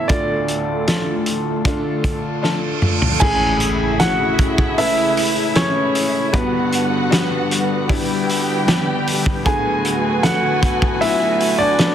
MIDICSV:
0, 0, Header, 1, 9, 480
1, 0, Start_track
1, 0, Key_signature, 3, "major"
1, 0, Tempo, 779221
1, 64, Time_signature, 4, 2, 24, 8
1, 7361, End_track
2, 0, Start_track
2, 0, Title_t, "Grand piano"
2, 0, Program_c, 0, 0
2, 0, Note_on_c, 0, 76, 88
2, 49, Note_on_c, 0, 74, 85
2, 68, Note_off_c, 0, 76, 0
2, 752, Note_off_c, 0, 74, 0
2, 1971, Note_on_c, 0, 80, 98
2, 1983, Note_on_c, 0, 68, 82
2, 2439, Note_off_c, 0, 68, 0
2, 2462, Note_on_c, 0, 78, 104
2, 2469, Note_on_c, 0, 66, 88
2, 2472, Note_off_c, 0, 80, 0
2, 2922, Note_off_c, 0, 66, 0
2, 2946, Note_on_c, 0, 76, 103
2, 2948, Note_on_c, 0, 64, 75
2, 2957, Note_off_c, 0, 78, 0
2, 3401, Note_off_c, 0, 64, 0
2, 3426, Note_on_c, 0, 61, 74
2, 3427, Note_on_c, 0, 73, 92
2, 3439, Note_off_c, 0, 76, 0
2, 3880, Note_off_c, 0, 61, 0
2, 3911, Note_on_c, 0, 71, 80
2, 3913, Note_on_c, 0, 59, 66
2, 3920, Note_off_c, 0, 73, 0
2, 5563, Note_off_c, 0, 71, 0
2, 5564, Note_off_c, 0, 59, 0
2, 5830, Note_on_c, 0, 80, 93
2, 5834, Note_on_c, 0, 68, 75
2, 6284, Note_off_c, 0, 68, 0
2, 6303, Note_on_c, 0, 78, 100
2, 6309, Note_on_c, 0, 66, 74
2, 6321, Note_off_c, 0, 80, 0
2, 6762, Note_off_c, 0, 66, 0
2, 6782, Note_on_c, 0, 76, 97
2, 6794, Note_on_c, 0, 64, 74
2, 6798, Note_off_c, 0, 78, 0
2, 7124, Note_off_c, 0, 64, 0
2, 7136, Note_on_c, 0, 74, 104
2, 7149, Note_on_c, 0, 62, 75
2, 7154, Note_off_c, 0, 76, 0
2, 7361, Note_off_c, 0, 62, 0
2, 7361, Note_off_c, 0, 74, 0
2, 7361, End_track
3, 0, Start_track
3, 0, Title_t, "Violin section"
3, 0, Program_c, 1, 48
3, 1978, Note_on_c, 1, 76, 95
3, 1980, Note_on_c, 1, 64, 94
3, 3876, Note_off_c, 1, 76, 0
3, 3877, Note_off_c, 1, 64, 0
3, 3893, Note_on_c, 1, 66, 84
3, 3895, Note_on_c, 1, 78, 96
3, 4839, Note_off_c, 1, 66, 0
3, 4840, Note_off_c, 1, 78, 0
3, 4860, Note_on_c, 1, 67, 85
3, 4860, Note_on_c, 1, 79, 94
3, 5803, Note_off_c, 1, 67, 0
3, 5803, Note_off_c, 1, 79, 0
3, 5818, Note_on_c, 1, 66, 94
3, 5821, Note_on_c, 1, 80, 99
3, 7361, Note_off_c, 1, 66, 0
3, 7361, Note_off_c, 1, 80, 0
3, 7361, End_track
4, 0, Start_track
4, 0, Title_t, "Upright piano"
4, 0, Program_c, 2, 0
4, 0, Control_c, 2, 64, 127
4, 0, Note_on_c, 2, 61, 69
4, 0, Note_on_c, 2, 69, 65
4, 0, Note_on_c, 2, 71, 70
4, 0, Note_on_c, 2, 73, 72
4, 59, Note_on_c, 2, 45, 58
4, 59, Note_on_c, 2, 62, 68
4, 60, Note_on_c, 2, 38, 59
4, 61, Note_on_c, 2, 65, 62
4, 64, Note_off_c, 2, 69, 0
4, 64, Note_on_c, 2, 69, 72
4, 73, Note_off_c, 2, 73, 0
4, 73, Control_c, 2, 64, 0
4, 76, Note_off_c, 2, 61, 0
4, 76, Note_off_c, 2, 71, 0
4, 191, Control_c, 2, 64, 127
4, 517, Note_off_c, 2, 62, 0
4, 518, Note_off_c, 2, 65, 0
4, 520, Note_off_c, 2, 69, 0
4, 541, Note_on_c, 2, 62, 64
4, 542, Note_on_c, 2, 65, 61
4, 544, Note_on_c, 2, 69, 72
4, 998, Note_off_c, 2, 62, 0
4, 999, Note_off_c, 2, 65, 0
4, 1000, Note_off_c, 2, 69, 0
4, 1026, Note_on_c, 2, 62, 83
4, 1027, Note_on_c, 2, 65, 72
4, 1030, Note_on_c, 2, 69, 85
4, 1481, Note_off_c, 2, 62, 0
4, 1482, Note_off_c, 2, 65, 0
4, 1483, Note_off_c, 2, 69, 0
4, 1495, Note_on_c, 2, 62, 76
4, 1500, Note_on_c, 2, 65, 76
4, 1501, Note_on_c, 2, 69, 91
4, 1955, Note_off_c, 2, 62, 0
4, 1957, Note_off_c, 2, 38, 0
4, 1957, Note_off_c, 2, 45, 0
4, 1958, Note_off_c, 2, 65, 0
4, 1958, Note_off_c, 2, 69, 0
4, 1984, Note_on_c, 2, 57, 77
4, 1985, Note_on_c, 2, 61, 64
4, 1987, Note_on_c, 2, 52, 66
4, 1987, Note_on_c, 2, 68, 78
4, 1988, Note_on_c, 2, 64, 69
4, 1990, Note_on_c, 2, 45, 62
4, 1991, Control_c, 2, 64, 0
4, 2101, Control_c, 2, 64, 127
4, 2440, Note_off_c, 2, 57, 0
4, 2440, Note_off_c, 2, 61, 0
4, 2441, Note_off_c, 2, 68, 0
4, 2442, Note_off_c, 2, 64, 0
4, 2467, Note_on_c, 2, 57, 72
4, 2467, Note_on_c, 2, 61, 65
4, 2467, Note_on_c, 2, 68, 77
4, 2469, Note_on_c, 2, 64, 69
4, 2921, Note_off_c, 2, 61, 0
4, 2922, Note_off_c, 2, 57, 0
4, 2922, Note_off_c, 2, 64, 0
4, 2922, Note_off_c, 2, 68, 0
4, 2941, Note_on_c, 2, 61, 68
4, 2942, Note_on_c, 2, 57, 76
4, 2943, Note_on_c, 2, 64, 68
4, 2948, Note_on_c, 2, 71, 83
4, 3398, Note_off_c, 2, 61, 0
4, 3399, Note_off_c, 2, 57, 0
4, 3400, Note_off_c, 2, 64, 0
4, 3402, Note_off_c, 2, 71, 0
4, 3419, Note_on_c, 2, 61, 68
4, 3420, Note_on_c, 2, 57, 76
4, 3424, Note_on_c, 2, 64, 68
4, 3425, Note_on_c, 2, 68, 86
4, 3877, Note_off_c, 2, 61, 0
4, 3878, Note_off_c, 2, 57, 0
4, 3880, Note_off_c, 2, 64, 0
4, 3881, Note_off_c, 2, 52, 0
4, 3881, Note_off_c, 2, 68, 0
4, 3882, Note_off_c, 2, 45, 0
4, 3898, Note_on_c, 2, 55, 79
4, 3899, Note_on_c, 2, 59, 62
4, 3900, Note_on_c, 2, 43, 69
4, 3901, Note_on_c, 2, 50, 62
4, 3901, Note_on_c, 2, 66, 82
4, 3903, Note_on_c, 2, 62, 69
4, 3911, Control_c, 2, 64, 0
4, 4021, Control_c, 2, 64, 127
4, 4357, Note_off_c, 2, 55, 0
4, 4357, Note_off_c, 2, 59, 0
4, 4358, Note_off_c, 2, 66, 0
4, 4359, Note_off_c, 2, 62, 0
4, 4376, Note_on_c, 2, 55, 71
4, 4377, Note_on_c, 2, 62, 71
4, 4379, Note_on_c, 2, 66, 80
4, 4381, Note_on_c, 2, 59, 67
4, 4836, Note_off_c, 2, 55, 0
4, 4837, Note_off_c, 2, 62, 0
4, 4837, Note_off_c, 2, 66, 0
4, 4838, Note_off_c, 2, 59, 0
4, 4862, Note_on_c, 2, 55, 92
4, 4862, Note_on_c, 2, 62, 81
4, 4864, Note_on_c, 2, 64, 92
4, 4865, Note_on_c, 2, 59, 84
4, 5319, Note_off_c, 2, 55, 0
4, 5319, Note_off_c, 2, 62, 0
4, 5320, Note_off_c, 2, 59, 0
4, 5320, Note_off_c, 2, 64, 0
4, 5345, Note_on_c, 2, 55, 85
4, 5347, Note_on_c, 2, 59, 80
4, 5347, Note_on_c, 2, 62, 83
4, 5348, Note_on_c, 2, 67, 100
4, 5797, Note_off_c, 2, 43, 0
4, 5798, Note_off_c, 2, 50, 0
4, 5801, Note_off_c, 2, 55, 0
4, 5801, Note_off_c, 2, 59, 0
4, 5801, Note_off_c, 2, 62, 0
4, 5802, Note_off_c, 2, 67, 0
4, 5820, Note_on_c, 2, 57, 73
4, 5821, Note_on_c, 2, 59, 69
4, 5823, Note_on_c, 2, 38, 61
4, 5825, Note_on_c, 2, 62, 67
4, 5825, Note_on_c, 2, 66, 82
4, 5826, Note_on_c, 2, 45, 66
4, 5831, Control_c, 2, 64, 0
4, 5922, Control_c, 2, 64, 127
4, 6278, Note_off_c, 2, 57, 0
4, 6278, Note_off_c, 2, 59, 0
4, 6281, Note_off_c, 2, 62, 0
4, 6281, Note_off_c, 2, 66, 0
4, 6301, Note_on_c, 2, 57, 75
4, 6305, Note_on_c, 2, 59, 74
4, 6306, Note_on_c, 2, 62, 66
4, 6308, Note_on_c, 2, 69, 84
4, 6759, Note_off_c, 2, 57, 0
4, 6760, Note_off_c, 2, 59, 0
4, 6761, Note_off_c, 2, 62, 0
4, 6762, Note_off_c, 2, 69, 0
4, 6779, Note_on_c, 2, 57, 77
4, 6780, Note_on_c, 2, 59, 67
4, 6781, Note_on_c, 2, 62, 67
4, 6784, Note_on_c, 2, 65, 68
4, 6822, Note_on_c, 2, 66, 82
4, 6824, Note_off_c, 2, 65, 0
4, 7237, Note_off_c, 2, 57, 0
4, 7238, Note_off_c, 2, 59, 0
4, 7239, Note_off_c, 2, 62, 0
4, 7259, Note_off_c, 2, 66, 0
4, 7263, Note_on_c, 2, 57, 78
4, 7265, Note_on_c, 2, 59, 71
4, 7267, Note_on_c, 2, 62, 75
4, 7269, Note_on_c, 2, 66, 82
4, 7361, Note_off_c, 2, 38, 0
4, 7361, Note_off_c, 2, 45, 0
4, 7361, Note_off_c, 2, 57, 0
4, 7361, Note_off_c, 2, 59, 0
4, 7361, Note_off_c, 2, 62, 0
4, 7361, Note_off_c, 2, 66, 0
4, 7361, End_track
5, 0, Start_track
5, 0, Title_t, "Analog synth pad"
5, 0, Program_c, 3, 89
5, 0, Note_on_c, 3, 69, 82
5, 58, Note_on_c, 3, 50, 71
5, 59, Note_on_c, 3, 65, 72
5, 63, Note_on_c, 3, 57, 67
5, 1957, Note_off_c, 3, 69, 0
5, 1962, Note_off_c, 3, 50, 0
5, 1962, Note_off_c, 3, 65, 0
5, 1964, Note_off_c, 3, 57, 0
5, 1977, Note_on_c, 3, 68, 87
5, 1978, Note_on_c, 3, 64, 69
5, 1979, Note_on_c, 3, 49, 83
5, 1979, Note_on_c, 3, 61, 75
5, 3881, Note_off_c, 3, 64, 0
5, 3881, Note_off_c, 3, 68, 0
5, 3882, Note_off_c, 3, 49, 0
5, 3882, Note_off_c, 3, 61, 0
5, 3897, Note_on_c, 3, 71, 87
5, 3900, Note_on_c, 3, 55, 73
5, 3901, Note_on_c, 3, 50, 83
5, 5801, Note_off_c, 3, 71, 0
5, 5803, Note_off_c, 3, 55, 0
5, 5824, Note_on_c, 3, 57, 77
5, 5826, Note_on_c, 3, 71, 97
5, 7361, Note_off_c, 3, 50, 0
5, 7361, Note_off_c, 3, 57, 0
5, 7361, Note_off_c, 3, 71, 0
5, 7361, End_track
6, 0, Start_track
6, 0, Title_t, "Steel-string acoustic guitar"
6, 0, Program_c, 4, 25
6, 0, Note_on_c, 4, 61, 82
6, 0, Note_on_c, 4, 64, 78
6, 53, Note_on_c, 4, 50, 78
6, 64, Note_on_c, 4, 57, 80
6, 70, Note_off_c, 4, 61, 0
6, 74, Note_off_c, 4, 64, 0
6, 77, Note_on_c, 4, 62, 69
6, 85, Note_on_c, 4, 65, 78
6, 1006, Note_off_c, 4, 50, 0
6, 1013, Note_on_c, 4, 50, 91
6, 1023, Note_off_c, 4, 57, 0
6, 1025, Note_on_c, 4, 57, 86
6, 1028, Note_off_c, 4, 62, 0
6, 1034, Note_off_c, 4, 65, 0
6, 1035, Note_on_c, 4, 62, 93
6, 1045, Note_on_c, 4, 65, 91
6, 1971, Note_on_c, 4, 45, 83
6, 1979, Note_off_c, 4, 50, 0
6, 1982, Note_on_c, 4, 52, 81
6, 1986, Note_off_c, 4, 57, 0
6, 1989, Note_off_c, 4, 62, 0
6, 1989, Note_on_c, 4, 56, 88
6, 1995, Note_off_c, 4, 65, 0
6, 1997, Note_on_c, 4, 61, 78
6, 2006, Note_on_c, 4, 64, 84
6, 2930, Note_off_c, 4, 52, 0
6, 2937, Note_off_c, 4, 56, 0
6, 2937, Note_on_c, 4, 52, 60
6, 2938, Note_off_c, 4, 45, 0
6, 2945, Note_on_c, 4, 56, 67
6, 2946, Note_off_c, 4, 61, 0
6, 2951, Note_off_c, 4, 64, 0
6, 2953, Note_on_c, 4, 61, 67
6, 2959, Note_on_c, 4, 64, 67
6, 3408, Note_off_c, 4, 52, 0
6, 3416, Note_on_c, 4, 52, 55
6, 3417, Note_off_c, 4, 56, 0
6, 3424, Note_off_c, 4, 61, 0
6, 3424, Note_on_c, 4, 56, 63
6, 3429, Note_off_c, 4, 64, 0
6, 3431, Note_on_c, 4, 61, 62
6, 3437, Note_on_c, 4, 64, 68
6, 3894, Note_off_c, 4, 52, 0
6, 3897, Note_on_c, 4, 55, 81
6, 3904, Note_off_c, 4, 56, 0
6, 3908, Note_off_c, 4, 61, 0
6, 3908, Note_on_c, 4, 59, 89
6, 3910, Note_off_c, 4, 64, 0
6, 3918, Note_on_c, 4, 62, 80
6, 3927, Note_on_c, 4, 66, 88
6, 4848, Note_off_c, 4, 55, 0
6, 4855, Note_on_c, 4, 55, 71
6, 4860, Note_off_c, 4, 59, 0
6, 4863, Note_on_c, 4, 59, 78
6, 4867, Note_off_c, 4, 62, 0
6, 4869, Note_on_c, 4, 62, 72
6, 5326, Note_off_c, 4, 55, 0
6, 5333, Note_on_c, 4, 55, 70
6, 5338, Note_off_c, 4, 59, 0
6, 5341, Note_on_c, 4, 59, 74
6, 5345, Note_off_c, 4, 62, 0
6, 5347, Note_on_c, 4, 62, 72
6, 5352, Note_off_c, 4, 66, 0
6, 5818, Note_on_c, 4, 50, 80
6, 5819, Note_off_c, 4, 55, 0
6, 5824, Note_off_c, 4, 59, 0
6, 5824, Note_on_c, 4, 54, 78
6, 5826, Note_off_c, 4, 62, 0
6, 5826, Note_on_c, 4, 57, 82
6, 5828, Note_on_c, 4, 59, 79
6, 5834, Note_on_c, 4, 66, 92
6, 6536, Note_off_c, 4, 66, 0
6, 6539, Note_on_c, 4, 66, 62
6, 6541, Note_off_c, 4, 50, 0
6, 6544, Note_off_c, 4, 59, 0
6, 6551, Note_on_c, 4, 59, 49
6, 6556, Note_off_c, 4, 57, 0
6, 6559, Note_on_c, 4, 57, 48
6, 6775, Note_off_c, 4, 54, 0
6, 6778, Note_on_c, 4, 54, 66
6, 6780, Note_off_c, 4, 57, 0
6, 6781, Note_off_c, 4, 66, 0
6, 6786, Note_off_c, 4, 59, 0
6, 6787, Note_on_c, 4, 57, 63
6, 6794, Note_on_c, 4, 59, 68
6, 6799, Note_on_c, 4, 66, 70
6, 7257, Note_off_c, 4, 54, 0
6, 7259, Note_on_c, 4, 54, 63
6, 7266, Note_off_c, 4, 57, 0
6, 7267, Note_off_c, 4, 59, 0
6, 7269, Note_on_c, 4, 57, 64
6, 7275, Note_on_c, 4, 59, 66
6, 7278, Note_off_c, 4, 66, 0
6, 7281, Note_on_c, 4, 66, 67
6, 7361, Note_off_c, 4, 54, 0
6, 7361, Note_off_c, 4, 57, 0
6, 7361, Note_off_c, 4, 59, 0
6, 7361, Note_off_c, 4, 66, 0
6, 7361, End_track
7, 0, Start_track
7, 0, Title_t, "Impact"
7, 0, Program_c, 5, 103
7, 1981, Note_on_c, 5, 60, 83
7, 3903, Note_off_c, 5, 60, 0
7, 7361, End_track
8, 0, Start_track
8, 0, Title_t, "Reverse cymbal"
8, 0, Program_c, 6, 119
8, 1021, Note_on_c, 6, 60, 69
8, 1982, Note_off_c, 6, 60, 0
8, 7361, End_track
9, 0, Start_track
9, 0, Title_t, "Drums"
9, 55, Note_on_c, 9, 42, 76
9, 60, Note_on_c, 9, 36, 98
9, 117, Note_off_c, 9, 42, 0
9, 121, Note_off_c, 9, 36, 0
9, 297, Note_on_c, 9, 42, 76
9, 358, Note_off_c, 9, 42, 0
9, 539, Note_on_c, 9, 42, 88
9, 543, Note_on_c, 9, 38, 106
9, 600, Note_off_c, 9, 42, 0
9, 604, Note_off_c, 9, 38, 0
9, 776, Note_on_c, 9, 42, 75
9, 838, Note_off_c, 9, 42, 0
9, 1015, Note_on_c, 9, 42, 77
9, 1017, Note_on_c, 9, 36, 81
9, 1077, Note_off_c, 9, 42, 0
9, 1079, Note_off_c, 9, 36, 0
9, 1257, Note_on_c, 9, 36, 86
9, 1257, Note_on_c, 9, 42, 66
9, 1319, Note_off_c, 9, 36, 0
9, 1319, Note_off_c, 9, 42, 0
9, 1503, Note_on_c, 9, 38, 52
9, 1565, Note_off_c, 9, 38, 0
9, 1737, Note_on_c, 9, 45, 86
9, 1798, Note_off_c, 9, 45, 0
9, 1860, Note_on_c, 9, 43, 81
9, 1921, Note_off_c, 9, 43, 0
9, 1978, Note_on_c, 9, 49, 103
9, 1981, Note_on_c, 9, 36, 118
9, 2039, Note_off_c, 9, 49, 0
9, 2042, Note_off_c, 9, 36, 0
9, 2217, Note_on_c, 9, 46, 86
9, 2220, Note_on_c, 9, 44, 61
9, 2279, Note_off_c, 9, 46, 0
9, 2282, Note_off_c, 9, 44, 0
9, 2461, Note_on_c, 9, 44, 66
9, 2461, Note_on_c, 9, 46, 93
9, 2465, Note_on_c, 9, 38, 127
9, 2523, Note_off_c, 9, 44, 0
9, 2523, Note_off_c, 9, 46, 0
9, 2526, Note_off_c, 9, 38, 0
9, 2701, Note_on_c, 9, 46, 80
9, 2702, Note_on_c, 9, 44, 69
9, 2704, Note_on_c, 9, 36, 94
9, 2762, Note_off_c, 9, 46, 0
9, 2764, Note_off_c, 9, 44, 0
9, 2765, Note_off_c, 9, 36, 0
9, 2823, Note_on_c, 9, 36, 100
9, 2885, Note_off_c, 9, 36, 0
9, 2943, Note_on_c, 9, 44, 66
9, 2943, Note_on_c, 9, 46, 83
9, 3005, Note_off_c, 9, 44, 0
9, 3005, Note_off_c, 9, 46, 0
9, 3183, Note_on_c, 9, 44, 70
9, 3185, Note_on_c, 9, 46, 76
9, 3245, Note_off_c, 9, 44, 0
9, 3247, Note_off_c, 9, 46, 0
9, 3420, Note_on_c, 9, 46, 97
9, 3421, Note_on_c, 9, 44, 66
9, 3426, Note_on_c, 9, 38, 107
9, 3482, Note_off_c, 9, 46, 0
9, 3483, Note_off_c, 9, 44, 0
9, 3487, Note_off_c, 9, 38, 0
9, 3664, Note_on_c, 9, 44, 69
9, 3665, Note_on_c, 9, 46, 84
9, 3725, Note_off_c, 9, 44, 0
9, 3727, Note_off_c, 9, 46, 0
9, 3902, Note_on_c, 9, 44, 69
9, 3902, Note_on_c, 9, 46, 89
9, 3903, Note_on_c, 9, 36, 114
9, 3964, Note_off_c, 9, 44, 0
9, 3964, Note_off_c, 9, 46, 0
9, 3965, Note_off_c, 9, 36, 0
9, 4141, Note_on_c, 9, 46, 82
9, 4144, Note_on_c, 9, 44, 65
9, 4203, Note_off_c, 9, 46, 0
9, 4206, Note_off_c, 9, 44, 0
9, 4386, Note_on_c, 9, 46, 96
9, 4387, Note_on_c, 9, 44, 72
9, 4390, Note_on_c, 9, 38, 120
9, 4448, Note_off_c, 9, 44, 0
9, 4448, Note_off_c, 9, 46, 0
9, 4452, Note_off_c, 9, 38, 0
9, 4627, Note_on_c, 9, 46, 84
9, 4628, Note_on_c, 9, 44, 75
9, 4688, Note_off_c, 9, 46, 0
9, 4690, Note_off_c, 9, 44, 0
9, 4863, Note_on_c, 9, 36, 98
9, 4866, Note_on_c, 9, 44, 62
9, 4866, Note_on_c, 9, 46, 87
9, 4925, Note_off_c, 9, 36, 0
9, 4927, Note_off_c, 9, 44, 0
9, 4927, Note_off_c, 9, 46, 0
9, 5107, Note_on_c, 9, 44, 68
9, 5108, Note_on_c, 9, 46, 76
9, 5168, Note_off_c, 9, 44, 0
9, 5170, Note_off_c, 9, 46, 0
9, 5345, Note_on_c, 9, 46, 91
9, 5346, Note_on_c, 9, 44, 62
9, 5350, Note_on_c, 9, 38, 115
9, 5407, Note_off_c, 9, 44, 0
9, 5407, Note_off_c, 9, 46, 0
9, 5412, Note_off_c, 9, 38, 0
9, 5588, Note_on_c, 9, 44, 68
9, 5590, Note_on_c, 9, 46, 91
9, 5649, Note_off_c, 9, 44, 0
9, 5651, Note_off_c, 9, 46, 0
9, 5705, Note_on_c, 9, 36, 99
9, 5767, Note_off_c, 9, 36, 0
9, 5826, Note_on_c, 9, 36, 124
9, 5827, Note_on_c, 9, 44, 69
9, 5827, Note_on_c, 9, 46, 88
9, 5888, Note_off_c, 9, 36, 0
9, 5888, Note_off_c, 9, 44, 0
9, 5888, Note_off_c, 9, 46, 0
9, 6065, Note_on_c, 9, 46, 90
9, 6068, Note_on_c, 9, 44, 69
9, 6127, Note_off_c, 9, 46, 0
9, 6130, Note_off_c, 9, 44, 0
9, 6303, Note_on_c, 9, 44, 69
9, 6303, Note_on_c, 9, 46, 98
9, 6307, Note_on_c, 9, 38, 122
9, 6364, Note_off_c, 9, 46, 0
9, 6365, Note_off_c, 9, 44, 0
9, 6368, Note_off_c, 9, 38, 0
9, 6544, Note_on_c, 9, 46, 81
9, 6546, Note_on_c, 9, 36, 91
9, 6546, Note_on_c, 9, 44, 67
9, 6606, Note_off_c, 9, 46, 0
9, 6607, Note_off_c, 9, 44, 0
9, 6608, Note_off_c, 9, 36, 0
9, 6665, Note_on_c, 9, 36, 98
9, 6727, Note_off_c, 9, 36, 0
9, 6786, Note_on_c, 9, 44, 66
9, 6786, Note_on_c, 9, 46, 88
9, 6847, Note_off_c, 9, 44, 0
9, 6847, Note_off_c, 9, 46, 0
9, 7024, Note_on_c, 9, 44, 68
9, 7025, Note_on_c, 9, 46, 76
9, 7085, Note_off_c, 9, 44, 0
9, 7087, Note_off_c, 9, 46, 0
9, 7260, Note_on_c, 9, 44, 68
9, 7260, Note_on_c, 9, 46, 102
9, 7265, Note_on_c, 9, 38, 109
9, 7321, Note_off_c, 9, 46, 0
9, 7322, Note_off_c, 9, 44, 0
9, 7327, Note_off_c, 9, 38, 0
9, 7361, End_track
0, 0, End_of_file